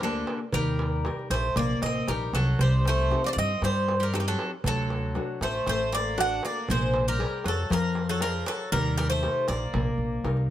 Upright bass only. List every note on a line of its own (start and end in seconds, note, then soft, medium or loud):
0.00 0.23 D2 medium
0.53 1.07 D#2 loud
1.30 1.48 A#1 medium
1.56 1.74 A#1 loud
1.82 2.05 A1 medium
2.08 2.31 A#1 medium
2.33 2.56 C2 medium
2.59 3.13 C2 loud
3.37 3.54 G2 medium
3.62 4.33 G2 loud
4.64 5.18 D2 loud
5.41 5.59 A1 medium
5.67 6.38 A1 medium
6.70 7.23 A#1 loud
7.45 7.63 F2 medium
7.70 8.42 F2 medium
8.72 9.25 D#2 loud
9.49 9.66 A#1 medium
9.74 9.91 A#1 medium
9.98 10.21 A#1 medium
10.24 10.47 C2 medium